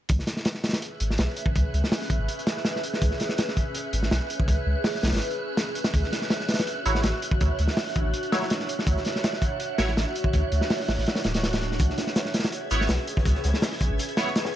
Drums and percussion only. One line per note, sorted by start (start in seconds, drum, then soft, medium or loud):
0.09 kick loud
0.09 closed hi-hat medium
0.19 snare soft
0.27 snare medium
0.27 closed hi-hat medium
0.37 snare soft
0.45 snare loud
0.45 closed hi-hat medium
0.55 snare medium
0.64 snare medium
0.64 closed hi-hat medium
0.69 snare medium
0.69 closed hi-hat medium
0.73 snare loud
0.73 closed hi-hat medium
0.82 closed hi-hat medium
1.00 closed hi-hat medium
1.10 snare soft
1.18 snare loud
1.18 closed hi-hat medium
1.37 closed hi-hat medium
1.46 kick medium
1.55 kick loud
1.55 closed hi-hat medium
1.74 closed hi-hat medium
1.84 snare medium
1.92 snare loud
1.92 open hi-hat medium
2.02 snare soft
2.10 kick medium
2.10 closed hi-hat medium
2.28 closed hi-hat medium
2.39 closed hi-hat soft
2.47 snare loud
2.47 closed hi-hat medium
2.57 snare soft
2.65 snare medium
2.65 closed hi-hat medium
2.76 snare soft
2.83 closed hi-hat medium
2.93 snare soft
3.02 kick loud
3.02 closed hi-hat medium
3.11 snare soft
3.20 snare soft
3.20 closed hi-hat medium
3.29 snare soft
3.38 snare loud
3.38 closed hi-hat medium
3.48 snare medium
3.57 kick medium
3.57 closed hi-hat medium
3.75 closed hi-hat medium
3.93 closed hi-hat medium
4.03 snare soft
4.11 snare loud
4.11 closed hi-hat medium
4.30 closed hi-hat medium
4.40 kick medium
4.48 kick medium
4.48 closed hi-hat medium
4.84 snare loud
4.84 open hi-hat medium
4.95 snare soft
5.03 snare medium
5.03 closed hi-hat medium
5.08 snare medium
5.08 closed hi-hat medium
5.12 snare medium
5.12 closed hi-hat medium
5.17 snare medium
5.17 closed hi-hat medium
5.22 closed hi-hat medium
5.31 closed hi-hat soft
5.57 snare loud
5.57 closed hi-hat medium
5.75 closed hi-hat medium
5.84 snare loud
5.84 closed hi-hat medium
5.94 kick medium
5.94 closed hi-hat medium
6.03 snare soft
6.12 snare soft
6.12 closed hi-hat medium
6.21 snare soft
6.30 snare loud
6.30 closed hi-hat medium
6.40 snare soft
6.49 snare medium
6.49 closed hi-hat medium
6.54 snare medium
6.54 closed hi-hat medium
6.59 snare loud
6.59 closed hi-hat medium
6.67 closed hi-hat medium
6.86 closed hi-hat medium
6.95 snare soft
7.04 snare loud
7.04 closed hi-hat medium
7.22 closed hi-hat medium
7.31 kick medium
7.41 kick loud
7.41 closed hi-hat medium
7.59 closed hi-hat medium
7.68 snare medium
7.77 snare loud
7.77 open hi-hat medium
7.87 snare soft
7.96 kick medium
7.96 closed hi-hat medium
8.14 closed hi-hat medium
8.23 closed hi-hat soft
8.32 snare medium
8.32 closed hi-hat medium
8.42 snare soft
8.50 snare loud
8.50 closed hi-hat medium
8.60 snare soft
8.69 closed hi-hat medium
8.79 snare soft
8.87 kick loud
8.87 closed hi-hat medium
8.97 snare soft
9.05 snare soft
9.05 closed hi-hat medium
9.16 snare soft
9.24 snare loud
9.24 closed hi-hat medium
9.33 snare medium
9.42 kick medium
9.42 closed hi-hat medium
9.60 closed hi-hat medium
9.78 snare loud
9.78 closed hi-hat medium
9.89 snare soft
9.97 snare loud
9.97 closed hi-hat medium
10.15 closed hi-hat medium
10.24 kick medium
10.33 kick loud
10.33 closed hi-hat medium
10.52 closed hi-hat medium
10.61 snare soft
10.70 snare loud
10.70 open hi-hat medium
10.80 snare soft
10.88 snare loud
10.88 open hi-hat medium
10.99 snare soft
11.06 snare loud
11.06 closed hi-hat medium
11.15 snare loud
11.15 closed hi-hat medium
11.24 snare loud
11.24 closed hi-hat medium
11.34 snare medium
11.34 closed hi-hat medium
11.43 snare medium
11.43 closed hi-hat medium
11.53 snare medium
11.53 closed hi-hat medium
11.61 snare soft
11.61 closed hi-hat medium
11.72 snare soft
11.79 kick loud
11.79 closed hi-hat medium
11.79 shaker medium
11.90 snare soft
11.98 snare soft
11.98 snare medium
11.98 closed hi-hat medium
11.98 shaker medium
12.07 snare soft
12.16 snare loud
12.16 closed hi-hat medium
12.16 shaker medium
12.25 snare medium
12.34 snare medium
12.34 closed hi-hat medium
12.34 shaker medium
12.39 snare medium
12.39 closed hi-hat medium
12.44 snare loud
12.44 closed hi-hat medium
12.52 closed hi-hat medium
12.52 shaker medium
12.71 closed hi-hat medium
12.71 shaker medium
12.81 snare soft
12.89 snare loud
12.89 closed hi-hat medium
12.89 shaker medium
12.99 closed hi-hat soft
13.07 closed hi-hat medium
13.07 shaker medium
13.17 kick medium
13.17 snare soft
13.25 kick loud
13.25 closed hi-hat medium
13.25 shaker medium
13.35 snare medium
13.44 snare medium
13.44 closed hi-hat medium
13.44 shaker medium
13.54 snare soft
13.62 snare loud
13.62 open hi-hat medium
13.62 shaker medium
13.72 snare soft
13.81 kick medium
13.81 closed hi-hat medium
13.81 shaker medium
13.99 closed hi-hat medium
13.99 shaker medium
14.09 closed hi-hat soft
14.17 snare loud
14.17 closed hi-hat medium
14.17 shaker medium
14.26 snare soft
14.36 snare loud
14.36 closed hi-hat medium
14.36 shaker medium
14.45 snare loud
14.45 snare soft